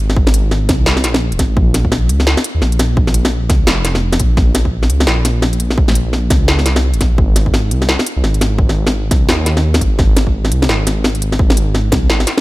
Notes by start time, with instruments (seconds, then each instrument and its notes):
Already playing: detuned saw bass G#1
0.10 snare
0.16 kick
0.27 snare
0.34 closed hi-hat
0.51 snare
0.69 detuned saw bass C2, kick, snare, closed hi-hat
0.86 snare
0.97 snare
1.04 detuned saw bass A#1, snare, closed hi-hat
1.14 snare
1.32 detuned saw bass D#1, closed hi-hat
1.39 detuned saw bass G#1, kick, snare, closed hi-hat
1.57 detuned saw bass A#1, kick
1.74 snare, closed hi-hat
1.85 kick
1.92 snare
2.09 detuned saw bass C#2, closed hi-hat
2.20 snare
2.27 snare
2.37 snare
2.44 closed hi-hat
2.55 detuned saw bass D#2
2.62 detuned saw bass A#1, snare
2.72 closed hi-hat
2.79 snare, closed hi-hat
2.97 kick
3.07 snare
3.14 closed hi-hat
3.25 snare
3.49 detuned saw bass C#2, kick, snare, closed hi-hat
3.67 detuned saw bass F1, snare
3.85 snare, closed hi-hat
3.95 snare
4.13 snare, closed hi-hat
4.20 detuned saw bass A#1, kick, closed hi-hat
4.37 kick, snare
4.55 snare, closed hi-hat
4.65 kick
4.83 snare
4.90 detuned saw bass C#2, closed hi-hat
5.00 snare
5.07 detuned saw bass A#1, snare
5.25 snare, closed hi-hat
5.42 snare
5.53 closed hi-hat
5.60 closed hi-hat
5.71 snare
5.78 kick
5.88 snare
5.95 closed hi-hat
6.13 snare
6.30 detuned saw bass C#2, kick, snare, closed hi-hat
6.48 snare
6.59 snare
6.65 detuned saw bass C2, snare, closed hi-hat
6.76 snare
6.93 detuned saw bass G#1, closed hi-hat
7.01 detuned saw bass A#1, kick, snare, closed hi-hat
7.18 detuned saw bass G#1, kick
7.36 snare, closed hi-hat
7.46 kick
7.54 snare
7.71 detuned saw bass C2, closed hi-hat
7.82 snare
7.89 snare
7.99 snare
8.06 closed hi-hat
8.16 detuned saw bass C2
8.24 detuned saw bass G#1, snare
8.34 closed hi-hat
8.41 snare, closed hi-hat
8.59 kick
8.69 snare
8.87 snare
9.11 detuned saw bass C2, kick, snare, closed hi-hat
9.28 detuned saw bass D#2, snare
9.46 snare, closed hi-hat
9.57 snare
9.74 snare, closed hi-hat
9.81 detuned saw bass G#1, kick, closed hi-hat
9.99 kick, snare
10.17 snare, closed hi-hat
10.27 kick
10.45 snare
10.51 detuned saw bass C2, closed hi-hat
10.62 snare
10.69 detuned saw bass G#1, snare
10.87 snare, closed hi-hat
11.04 snare
11.15 closed hi-hat
11.22 closed hi-hat
11.32 snare
11.39 kick
11.50 snare
11.57 closed hi-hat
11.75 snare
11.92 detuned saw bass C2, kick, snare, closed hi-hat
12.09 detuned saw bass G#1, snare
12.20 snare
12.27 snare, closed hi-hat
12.38 snare